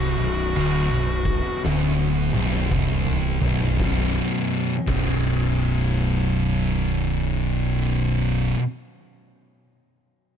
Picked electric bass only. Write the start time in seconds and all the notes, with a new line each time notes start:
Already playing: C1
0.18 B0
0.57 D1
0.91 B0
1.65 D1
2.34 B0
2.71 C1
3.42 B0
3.79 B0
4.88 B0